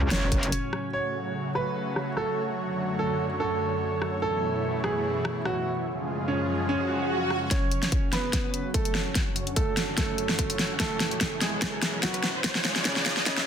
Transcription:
0.00 0.90 A2 medium
0.00 0.90 C#3 medium
0.00 0.90 F#3 medium
0.00 0.90 C#4 medium
0.00 0.92 F#4 medium
0.11 0.51 F#1 loud
0.11 0.86 C#4 medium
0.11 0.86 C#5 loud
0.11 snare loud
0.11 closed hi-hat medium
0.32 kick medium
0.32 closed hi-hat medium
0.43 closed hi-hat medium
0.52 closed hi-hat medium
0.73 cross-stick medium
0.93 2.56 C#3 medium
0.93 4.19 F#3 medium
0.93 4.19 A3 medium
0.93 4.19 F#4 medium
0.93 5.83 C#5 medium
0.93 1.48 C#5 medium
1.55 2.09 B4 medium
1.55 cross-stick medium
1.96 cross-stick medium
2.17 2.41 A4 medium
2.17 cross-stick medium
2.58 5.83 F#2 medium
2.58 4.21 D3 medium
2.99 3.23 A4 medium
3.40 4.15 A4 medium
4.02 cross-stick soft
4.22 5.85 B2 medium
4.22 5.85 E3 medium
4.22 5.85 A3 medium
4.22 5.85 E4 medium
4.22 4.76 A4 medium
4.84 5.38 G#4 medium
4.84 cross-stick medium
5.25 cross-stick medium
5.45 5.70 F#4 medium
5.45 cross-stick medium
5.87 7.49 F#2 medium
5.87 7.49 C#3 medium
5.87 7.49 F3 medium
5.87 7.49 G#3 medium
5.87 7.49 F4 medium
5.87 7.49 G#4 medium
6.28 6.52 C#4 medium
6.69 7.43 C#4 medium
6.69 swell medium
7.30 cross-stick soft
7.51 9.14 C#3 medium
7.51 10.77 F#3 medium
7.51 8.05 C#4 medium
7.51 12.40 C#4 medium
7.51 10.77 F#4 medium
7.51 8.05 C#5 medium
7.51 12.40 C#5 medium
7.51 kick medium
7.51 snare soft
7.51 closed hi-hat medium
7.51 riser medium
7.71 closed hi-hat medium
7.83 snare soft
7.83 closed hi-hat soft
7.92 kick loud
7.92 closed hi-hat medium
8.13 8.67 B3 medium
8.13 8.67 B4 medium
8.13 snare medium
8.13 closed hi-hat medium
8.33 kick loud
8.33 snare soft
8.33 closed hi-hat medium
8.54 closed hi-hat medium
8.74 8.99 A3 medium
8.74 8.99 A4 medium
8.74 kick loud
8.74 closed hi-hat medium
8.85 closed hi-hat medium
8.95 snare medium
9.15 13.47 F#2 medium
9.15 10.78 D3 medium
9.15 kick medium
9.15 snare medium
9.15 closed hi-hat medium
9.36 closed hi-hat medium
9.47 closed hi-hat soft
9.56 9.81 A3 medium
9.56 9.81 A4 medium
9.56 kick medium
9.56 closed hi-hat medium
9.77 snare medium
9.77 closed hi-hat medium
9.97 10.72 A3 medium
9.97 10.72 A4 medium
9.97 kick loud
9.97 snare medium
9.97 closed hi-hat medium
10.18 closed hi-hat medium
10.29 snare medium
10.39 kick medium
10.39 closed hi-hat medium
10.50 closed hi-hat medium
10.59 snare medium
10.59 closed hi-hat soft
10.80 12.42 B2 medium
10.80 12.42 E3 medium
10.80 11.34 A3 medium
10.80 12.42 E4 medium
10.80 11.34 A4 loud
10.80 kick loud
10.80 snare medium
10.80 closed hi-hat medium
11.00 snare medium
11.00 closed hi-hat soft
11.11 closed hi-hat soft
11.21 kick loud
11.21 snare medium
11.21 closed hi-hat medium
11.41 11.95 G#3 medium
11.41 11.95 G#4 medium
11.41 snare medium
11.41 closed hi-hat medium
11.62 kick loud
11.62 snare medium
11.62 closed hi-hat medium
11.82 snare medium
11.82 closed hi-hat medium
12.03 12.28 F#3 medium
12.03 12.28 F#4 medium
12.03 kick medium
12.03 snare medium
12.03 closed hi-hat medium
12.14 closed hi-hat medium
12.23 snare medium
12.44 13.47 C#3 medium
12.44 13.47 F3 medium
12.44 13.47 G#3 medium
12.44 13.47 F4 medium
12.44 13.47 G#4 medium
12.44 kick loud
12.44 snare medium
12.44 closed hi-hat medium
12.55 snare medium
12.65 snare loud
12.65 closed hi-hat soft
12.76 snare medium
12.76 closed hi-hat soft
12.85 13.10 C#3 medium
12.85 13.10 C#4 medium
12.85 kick loud
12.85 snare loud
12.85 closed hi-hat medium
12.96 snare medium
13.06 snare loud
13.06 closed hi-hat medium
13.17 snare medium
13.26 13.47 C#3 medium
13.26 13.47 C#4 medium
13.26 kick loud
13.26 snare loud
13.26 closed hi-hat medium
13.37 snare loud

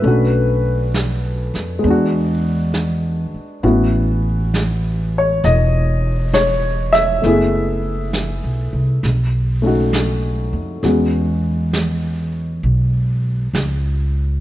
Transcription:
0.00 1.49 B1 medium
0.00 1.82 A3 soft
0.00 0.61 B4 medium
0.04 1.84 C#4 soft
0.04 1.84 D4 soft
0.04 1.85 F#4 soft
0.04 brush sweep soft
0.94 snare soft
0.94 hi-hat pedal soft
1.54 1.82 F2 medium
1.54 snare soft
1.79 3.61 G#3 soft
1.79 3.62 B3 soft
1.84 3.29 E2 medium
1.84 3.64 D4 soft
1.84 brush sweep soft
1.90 3.63 F#4 medium
2.74 snare soft
2.74 hi-hat pedal soft
3.34 muted upright bass stroke soft
3.63 5.39 A1 medium
3.63 7.22 B3 soft
3.63 7.23 C#4 soft
3.63 7.23 E4 soft
3.63 7.23 F#4 medium
3.63 brush sweep soft
4.54 snare soft
4.54 hi-hat pedal soft
5.18 5.46 C#5 medium
5.44 7.19 E1 medium
5.44 6.30 D#5 medium
5.44 brush sweep soft
5.44 snare soft
6.33 6.95 C#5 medium
6.33 snare soft
6.33 hi-hat pedal soft
6.93 7.78 E5 medium
6.93 snare soft
7.22 8.39 F#1 medium
7.22 9.02 A3 soft
7.22 9.03 B3 soft
7.22 9.04 E4 soft
7.22 brush sweep soft
7.22 snare soft
7.27 9.05 G#4 medium
8.13 snare soft
8.13 hi-hat pedal medium
8.44 8.71 B1 medium
8.73 9.01 C2 medium
9.03 10.49 B1 medium
9.03 brush sweep soft
9.03 snare soft
9.62 10.83 A3 soft
9.62 10.83 C#4 soft
9.62 10.84 D#4 soft
9.67 10.84 F#4 soft
9.93 snare soft
9.93 hi-hat pedal medium
10.53 10.81 F2 medium
10.83 12.59 E2 medium
10.83 14.40 G#3 soft
10.83 14.40 B3 soft
10.83 14.40 C#4 soft
10.83 14.40 F#4 soft
10.83 brush sweep soft
10.83 snare soft
11.73 snare soft
11.73 hi-hat pedal soft
12.63 13.50 B1 medium
12.63 brush sweep soft
13.53 14.40 C#2 medium
13.53 snare soft
13.53 hi-hat pedal soft

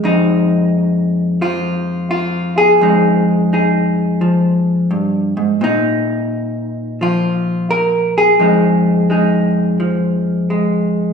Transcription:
0.00 2.80 F2 medium
0.00 2.82 G#3 soft
0.00 1.42 G#4 soft
0.05 2.13 D#4 medium
1.41 2.86 F3 medium
1.41 2.09 F4 medium
2.11 2.57 F4 medium
2.58 3.51 G#4 medium
2.81 4.90 F2 medium
2.81 4.94 G#3 soft
2.81 3.52 D#4 soft
3.53 5.60 D#4 soft
3.53 5.64 G#4 soft
4.21 5.67 F3 soft
4.91 5.36 G2 soft
5.37 5.61 G#2 medium
5.61 8.41 A#2 medium
5.61 7.73 D#4 medium
7.01 8.44 F3 medium
7.01 7.70 F4 medium
7.71 8.17 A#4 medium
8.18 9.10 G#4 medium
8.40 11.13 F2 medium
8.40 9.09 G#3 soft
8.40 9.11 D#4 soft
9.10 10.49 G#3 soft
9.10 11.13 D#4 soft
9.10 11.13 G#4 soft
9.80 11.13 F3 medium
10.50 11.13 G#3 soft

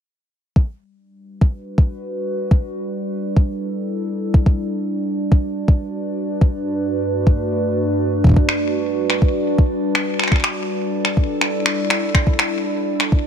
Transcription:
0.56 6.41 G3 medium
0.56 kick medium
0.91 13.27 D4 medium
1.12 3.29 F#4 medium
1.12 3.29 B4 medium
1.41 13.27 D5 medium
1.41 kick medium
1.78 kick loud
2.51 kick loud
3.37 5.24 E4 medium
3.37 5.24 A4 medium
3.37 kick medium
4.34 kick loud
4.46 kick loud
4.65 11.10 F#4 medium
4.65 11.10 B4 medium
5.32 kick loud
5.68 kick loud
6.41 8.37 G2 medium
6.41 kick medium
6.82 8.36 A3 medium
7.27 kick loud
8.24 kick loud
8.27 kick medium
8.29 kick medium
8.32 kick medium
8.34 13.27 G3 medium
8.34 kick soft
8.36 kick loud
8.49 finger snap medium
9.10 finger snap soft
9.22 kick medium
9.58 kick loud
9.95 finger snap medium
10.19 finger snap soft
10.24 finger snap soft
10.28 finger snap soft
10.32 finger snap soft
10.32 kick medium
10.36 finger snap soft
10.40 finger snap soft
10.44 finger snap medium
10.50 13.05 A4 medium
11.05 finger snap soft
11.13 13.05 E4 medium
11.13 kick medium
11.41 finger snap soft
11.66 finger snap medium
11.90 finger snap medium
12.14 finger snap soft
12.14 kick loud
12.27 kick medium
12.39 finger snap medium
12.84 13.27 F#4 medium
13.00 finger snap soft
13.12 13.27 B4 medium
13.12 kick medium

